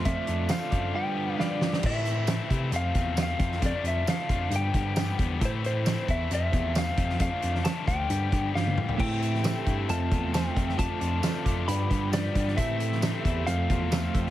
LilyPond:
<<
  \new Staff \with { instrumentName = "Lead electric guitar" } { \time 4/4 \key a \minor \tempo 4 = 134 e''4 f''4 g''4 <d'' f''>4 | e''2 f''4 f''4 | d''8 e''8 f''4 g''4. r8 | c''8 c''4 e''8 e''4 f''4 |
f''4 a''8 g''4. f''4 | g''2 a''4 g''4 | a''2 b''4 d''4 | e''2 f''2 | }
  \new Staff \with { instrumentName = "Clean electric guitar" } { \time 4/4 \key a \minor <f a c' f' a' d''>8 <c' f' a' d''>8 <c' f' a' d''>8 <c' f' a' d''>8 <g d' f' b' d''>4 <g d' f' b' d''>8 <f' b' d''>8 | r1 | r1 | r1 |
r1 | <a c' g' a' e''>8 <g' a' e''>8 <c' g' a' e''>8 <g' a' e''>8 <f a c' f' a' e''>4 <f a c' f' a' e''>8 <c' f' a' e''>8 | <f a c' f' a' d''>8 <c' f' a' d''>8 <c' f' a' d''>8 <c' f' a' d''>8 <g d' f' b' d''>4 <g d' f' b' d''>8 <f' b' d''>8 | <a c' g' a' e''>8 <g' a' e''>8 <c' g' a' e''>8 <g' a' e''>8 <f a c' f' a' e''>4 <f a c' f' a' e''>8 <c' f' a' e''>8 | }
  \new Staff \with { instrumentName = "Overdriven electric guitar" } { \time 4/4 \key a \minor <f a d' f'>8 <a d' f'>8 <f a d' f'>8 <a d' f'>8 <g, d f g b g'>8 <f g b g'>8 <g, d f g b g'>4 | <a, e a c' e'>8 <a c' e'>8 <e a c' e'>8 <a c' e'>8 <f, c f a c' f'>8 <f a c' f'>8 <f, c f a c' f'>4 | <f a d' f'>8 <a d' f'>8 <f a d' f'>8 <a d' f'>8 <g, d f g b g'>8 <f g b g'>8 <g, d f g b g'>4 | <a, e a c' e'>8 <a c' e'>8 <e a c' e'>8 <a c' e'>8 <f, c f a c' f'>8 <f a c' f'>8 <f, c f a c' f'>4 |
<f a d' f'>8 <a d' f'>8 <f a d' f'>8 <a d' f'>8 <g, d f g b g'>8 <f g b g'>8 <g, d f g b g'>4 | <a, e a c' e'>8 <a c' e'>8 <e a c' e'>8 <a c' e'>8 <f, c f a c' f'>8 <f a c' f'>8 <f, c f a c' f'>4 | <f a d' f'>8 <a d' f'>8 <f a d' f'>8 <a d' f'>8 <g, d f g b g'>8 <f g b g'>8 <g, d f g b g'>4 | <a, e a c' e'>8 <a c' e'>8 <e a c' e'>8 <a c' e'>8 <f, c f a c' f'>8 <f a c' f'>8 <f, c f a c' f'>4 | }
  \new Staff \with { instrumentName = "Tine electric piano" } { \clef bass \time 4/4 \key a \minor f,16 r16 f,8 r8 fis,8 r2 | a,4. c8 f,8 e,4 f,8 | f,16 r16 f,8 r8 f,8 g,8 g,4 e,8 | a,4. e,8 f,8 e,4 f,8 |
f,16 r16 f,8 r8 d,8 g,8 g,8 g,8 a,8 | a,4. g,8 f,8 e,4 f,8 | f,16 r16 f,8 r8 f,8 g,8 g,4 g,8 | a,4. e,8 f,8 e,4 f,8 | }
  \new DrumStaff \with { instrumentName = "Drums" } \drummode { \time 4/4 <hh bd>8 hh8 <hh sn tamb>8 <hh bd>8 r4 sn8 sn16 sn16 | <cymc bd>8 hh8 <hh sn tamb>8 <hh bd>8 hh8 <hh bd>8 <hh sn tamb>8 <hh bd>16 sn16 | <hh bd>8 hh8 <hh sn tamb>8 <hh bd>8 hh8 <hh bd>8 <hh sn tamb>8 <hh bd>8 | <hh bd>8 hh8 <hh sn tamb>8 <hh bd>8 hh8 <hh bd>8 <hh sn tamb>8 <hh bd>16 sn16 |
<hh bd>8 hh16 sn16 <hh sn tamb>8 <hh bd>8 hh8 <hh bd>8 sn16 tommh16 toml16 tomfh16 | <cymc bd>8 hh16 sn16 <hh sn tamb>8 <hh bd>8 hh8 <hh bd>8 <hh sn tamb>8 <hh bd>16 sn16 | <hh bd>8 hh8 <hh sn tamb>8 <hh bd>8 hh8 <hh bd>8 <hh sn tamb>8 <hh bd>16 sn16 | <hh bd>8 hh16 sn16 <hh sn tamb>8 <hh bd>8 hh8 <hh bd>8 <hh sn tamb>8 <hh bd>16 sn16 | }
>>